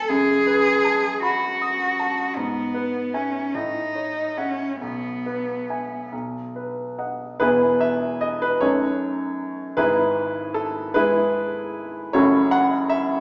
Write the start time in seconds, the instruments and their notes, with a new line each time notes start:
Already playing: cello A4, grand piano B4 G#5 B5 E6
0.09 grand piano F#2, cello G#4
0.47 grand piano B4
0.85 grand piano A5
1.23 cello F#4, grand piano B5
1.62 grand piano D#6
2.00 grand piano A5
2.37 grand piano G#2, cello B3
2.74 grand piano B4
3.14 cello C#4, grand piano E5 G#5
3.55 grand piano A2, cello D#4
3.95 grand piano C#5
4.37 cello C#4, grand piano E5 F#5
4.81 grand piano B1, cello B3
5.26 grand piano B4
5.70 grand piano E5 G#5
6.12 grand piano B1
6.56 grand piano B4
6.98 grand piano D#5 F#5
7.40 grand piano E1 E2 B3 E4 G#4 B4
7.81 grand piano E5
8.21 grand piano D#5
8.42 grand piano B4
8.61 grand piano F#2 A3 D#4 A4 C#5
9.77 grand piano G#1 G#2 E4 G#4 B4
10.54 grand piano A4
10.94 grand piano G#3 E4 G#4 B4
12.13 grand piano F#1 F#2 A3 C#4 E4 F#4 A4 C#5
12.51 grand piano F#5
12.90 grand piano E5